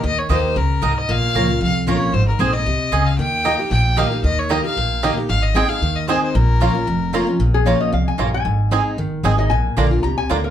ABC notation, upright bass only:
X:1
M:4/4
L:1/8
Q:"Swing" 1/4=228
K:Bbdor
V:1 name="Upright bass" clef=bass
E,,2 E,,2 D,,2 C,,2 | B,,,2 D,,2 C,,2 B,,,2 | A,,,2 B,,,2 C,,2 D,,2 | E,,4 B,,,4 |
E,,4 B,,,4 | A,,,4 E,,4 | B,,,4 F,,,4 | B,,,4 C,,2 B,,,2 |
A,,,4 G,,,2 A,,,2 | B,,,2 B,,,2 C,,2 =D,,2 |]